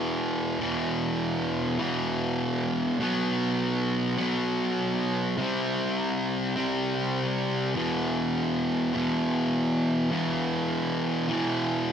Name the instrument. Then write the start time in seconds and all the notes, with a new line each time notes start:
distorted electric guitar
Already playing: E2 B2 E3
0.59 E2 B2
0.63 E3
1.79 E2 B2 E3
2.99 B2 F#3 B3
4.18 F#3 B3
4.22 B2
5.38 C3 G3 C4
6.56 G3 C4
6.60 C3
7.74 E2 B2 E3
8.93 E2 B2 E3
10.11 E2 B2 E3
11.28 E2 B2 E3